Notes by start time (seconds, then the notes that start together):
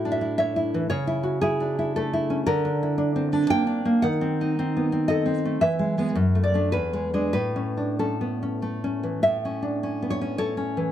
Already playing: A2 E4 F#4
0.05 D4
0.12 E5
0.21 E4
0.38 C#5 E5
0.56 E4
0.74 E3
0.90 C#3 C#5
1.07 E4
1.23 F#4
1.41 E4 G#4
1.60 D4
1.79 E4
1.96 A3 A4
2.13 E4
2.30 C#4
2.46 D3 A#4
2.65 D4
2.83 E4
2.98 D4
3.16 C4
3.33 D4
3.50 A#3 G5
3.67 D4
3.85 A#3
4.02 D#3 F#5
4.21 C4
4.41 D#4
4.59 C4
4.77 B3
4.92 C4
5.08 A4 D#5
5.26 C4
5.45 A3
5.61 E3 E5
5.79 G#3
5.98 G#3 B3
6.15 F#2
6.35 A3
6.44 D5
6.54 A3 D4
6.72 E2 B4
6.93 G#3
7.14 G#3 D4
7.33 A2 B4
7.56 C#4
7.77 D4
7.99 C#4 A4
8.21 B3
8.43 C#4
8.62 A3
8.84 C#4
9.03 E3
9.23 A2 E5
9.45 C#4
9.62 D4
9.83 C#4
10.02 B3
10.10 C#5
10.21 C#4
10.38 A4 C#5
10.57 C#4
10.77 E3